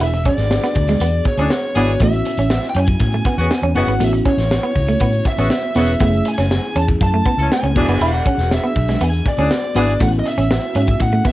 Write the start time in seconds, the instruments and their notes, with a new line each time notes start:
Already playing: fm electric piano B3 D4 F#4 G#4
0.00 fingered electric bass E1, clean electric guitar E4, lead electric guitar E5, closed hi-hat
0.13 muted clean electric guitar stroke, closed hi-hat
0.25 clean electric guitar C#4, lead electric guitar D5, kick, closed hi-hat
0.38 fingered electric bass G#1, snare, closed hi-hat
0.51 snare
0.63 clean electric guitar B3, snare, closed hi-hat
0.75 fingered electric bass D2, muted clean electric guitar stroke, kick, closed hi-hat
0.88 clean electric guitar G#3, snare, closed hi-hat
1.00 fingered electric bass E2, clean electric guitar B3, closed hi-hat
1.25 lead electric guitar C#5, muted clean electric guitar stroke, kick, closed hi-hat
1.37 fingered electric bass D2, horn section E3 D4 G#4, clean electric guitar C#4, closed hi-hat
1.50 snare
1.75 fingered electric bass G#1, horn section E3 D4 G#4, fm electric piano B3 D4 F#4 B4, clean electric guitar B3, closed hi-hat
1.88 closed hi-hat
2.00 fingered electric bass A1, clean electric guitar A3, fm electric piano B3 C#4 E4 F#4, lead electric guitar E5, kick, closed hi-hat
2.13 closed hi-hat
2.25 muted clean electric guitar stroke, closed hi-hat
2.38 fingered electric bass A1, clean electric guitar C#4, closed hi-hat
2.50 snare
2.63 snare
2.70 lead electric guitar G5
2.75 fingered electric bass F#2, clean electric guitar C#4, closed hi-hat
2.80 lead electric guitar G#5
2.87 kick, closed hi-hat
3.00 fingered electric bass A2, muted clean electric guitar stroke, kick, closed hi-hat
3.13 clean electric guitar A3, closed hi-hat
3.25 clean electric guitar B3, kick, snare, closed hi-hat
3.38 fingered electric bass E2, horn section C#3 B3 F#4, closed hi-hat
3.51 snare
3.62 fingered electric bass E2, clean electric guitar C#4, closed hi-hat
3.75 fingered electric bass F#1, horn section C#3 B3 F#4, fm electric piano B3 C#4 E4 F#4, muted clean electric guitar stroke, closed hi-hat
3.80 lead electric guitar F#5
3.87 fingered electric bass G#1, clean electric guitar B3, closed hi-hat
3.99 fingered electric bass A1, clean electric guitar A3, fm electric piano B3 C#4 E4 F#4, closed hi-hat
4.04 lead electric guitar E5
4.13 muted clean electric guitar stroke, closed hi-hat
4.25 clean electric guitar C#4, lead electric guitar C#5, kick, closed hi-hat
4.38 fingered electric bass A1, snare, closed hi-hat
4.51 snare
4.63 clean electric guitar B3, closed hi-hat
4.75 fingered electric bass C#2, muted clean electric guitar stroke, kick, closed hi-hat
4.88 clean electric guitar A3, closed hi-hat
5.00 fingered electric bass A2, clean electric guitar B3, kick, closed hi-hat
5.13 closed hi-hat
5.25 lead electric guitar E5, muted clean electric guitar stroke, kick, snare, closed hi-hat
5.38 fingered electric bass A1, horn section C#3 B3 F#4, clean electric guitar C#4, closed hi-hat
5.50 snare
5.63 closed hi-hat
5.75 fingered electric bass E1, horn section C#3 B3 F#4, fm electric piano B3 C#4 E4 G#4, clean electric guitar B3, open hi-hat
5.87 closed hi-hat
6.00 fingered electric bass F#1, fm electric piano A3 C#4 E4 G#4, clean electric guitar B3, lead electric guitar E5, kick, closed hi-hat
6.13 closed hi-hat
6.25 lead electric guitar G#5, muted clean electric guitar stroke, closed hi-hat
6.38 fingered electric bass F#1, clean electric guitar C#4, snare, closed hi-hat
6.51 snare
6.64 closed hi-hat
6.75 fingered electric bass E2, clean electric guitar C#4, lead electric guitar A5, closed hi-hat
6.88 kick, closed hi-hat
7.01 fingered electric bass F#2, lead electric guitar A5, muted clean electric guitar stroke, kick, closed hi-hat
7.14 clean electric guitar A3
7.26 clean electric guitar B3, kick, closed hi-hat
7.38 fingered electric bass C#2, horn section E3 C#4 A4, closed hi-hat
7.52 lead electric guitar G#5, snare
7.63 fingered electric bass C#2, clean electric guitar C#4, closed hi-hat
7.75 fingered electric bass E1, horn section E3 D4 G#4, fm electric piano B3 D4 F#4 G#4, muted clean electric guitar stroke, kick, crash
7.88 fingered electric bass F#1, clean electric guitar B3, closed hi-hat
8.00 fingered electric bass E1, clean electric guitar E4, lead electric guitar F#5, closed hi-hat
8.14 muted clean electric guitar stroke, closed hi-hat
8.26 clean electric guitar C#4, kick, closed hi-hat
8.38 fingered electric bass E1, snare, closed hi-hat
8.51 lead electric guitar E5, snare
8.64 clean electric guitar B3
8.76 fingered electric bass B1, muted clean electric guitar stroke, kick, closed hi-hat
8.88 clean electric guitar G#3, snare, closed hi-hat
9.01 fingered electric bass E2, clean electric guitar B3, lead electric guitar G#5, closed hi-hat
9.13 closed hi-hat
9.26 lead electric guitar D5, muted clean electric guitar stroke, kick, closed hi-hat
9.38 fingered electric bass D2, horn section E3 D4 G#4, clean electric guitar C#4, closed hi-hat
9.51 snare
9.75 fingered electric bass G#1, horn section E3 D4 G#4, fm electric piano B3 D4 F#4 B4, clean electric guitar B3, closed hi-hat
9.88 closed hi-hat
10.00 fingered electric bass A1, clean electric guitar A3, fm electric piano B3 C#4 E4 F#4, lead electric guitar F#5, kick, closed hi-hat
10.14 closed hi-hat
10.19 lead electric guitar D#5
10.26 lead electric guitar E5, muted clean electric guitar stroke, closed hi-hat
10.38 fingered electric bass A1, clean electric guitar C#4, closed hi-hat
10.51 snare
10.63 closed hi-hat
10.75 fingered electric bass G#2, clean electric guitar C#4, lead electric guitar E5, closed hi-hat
10.87 kick, closed hi-hat
11.00 fingered electric bass A2, lead electric guitar F#5, muted clean electric guitar stroke, kick, closed hi-hat
11.12 clean electric guitar A3, closed hi-hat
11.25 clean electric guitar B3, lead electric guitar E5, kick, snare, closed hi-hat